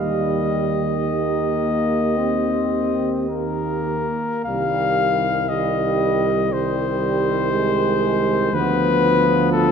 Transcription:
Already playing: tuba D#2, trombone D#3, trombone section G3, french horn section G4, flugelhorn D#5
1.06 trombone section A#3
2.16 trombone section C4
3.29 trombone section A#3, flugelhorn A#4
4.44 tuba C2, trombone D#3, trombone section G3, french horn section G4, flugelhorn F5
5.49 trombone D#3, trombone section G3, french horn section G4, flugelhorn D#5
6.52 trombone D#3, trombone section G3, french horn section G4, flugelhorn C5
7.52 trombone section G#3
8.52 tuba D2, trombone F3, trombone section B3, french horn section F4, flugelhorn B4
9.52 flugelhorn A4

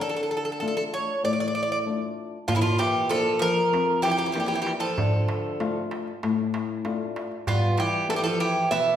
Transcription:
0.00 nylon-string guitar D3, bouzouki A4
0.09 bouzouki A4
0.16 bouzouki A4
0.23 bouzouki A4
0.31 bouzouki A4
0.37 bouzouki A4
0.45 bouzouki A4
0.52 bouzouki A4
0.60 nylon-string guitar A3 D4 F4, bouzouki A4
0.68 bouzouki A4
0.77 bouzouki A4
0.94 bouzouki C#5
1.24 nylon-string guitar A2, bouzouki D5
1.33 bouzouki D5
1.40 bouzouki D5
1.48 bouzouki D5
1.55 bouzouki D5
1.63 bouzouki D5
1.72 bouzouki D5
1.86 nylon-string guitar A3 D4 F4
2.48 nylon-string guitar A#2, bouzouki D3 F4, darbuka dum
2.55 bouzouki C#3 E4
2.61 bouzouki D3 F4
2.78 bouzouki E3 G4, darbuka tek
3.09 bouzouki F3 A4, nylon-string guitar A#3 D4 F4, darbuka tek
3.39 bouzouki F3 A#4, darbuka tek
3.58 darbuka tek
3.73 nylon-string guitar F2, darbuka tek
4.02 bouzouki E3 G4, darbuka tek
4.10 bouzouki E3 G4
4.18 bouzouki E3 G4
4.25 bouzouki E3 G4
4.32 bouzouki E3 G4, nylon-string guitar A#3 D4 F4, darbuka tek
4.40 bouzouki E3 G4
4.46 bouzouki E3 G4
4.54 bouzouki E3 G4
4.62 bouzouki E3 G4
4.66 darbuka tek
4.80 bouzouki F3 A4, darbuka tek
4.98 nylon-string guitar D3, darbuka dum
5.29 darbuka tek
5.60 nylon-string guitar A3 D4 F4, darbuka tek
5.91 darbuka tek
6.07 darbuka tek
6.23 nylon-string guitar A2, darbuka tek
6.54 darbuka tek
6.85 nylon-string guitar A3 D4 F4, darbuka tek
7.16 darbuka tek
7.32 darbuka tek
7.47 nylon-string guitar G3, bouzouki B3 F4, darbuka dum
7.77 bouzouki E3 G4, darbuka tek
8.09 bouzouki E3 A4, nylon-string guitar B3 E4 G4, darbuka tek
8.16 bouzouki E3 G4
8.24 bouzouki F3 A4
8.40 bouzouki E3 G4, darbuka tek
8.57 darbuka tek
8.71 nylon-string guitar B2, bouzouki B3 E5, darbuka tek

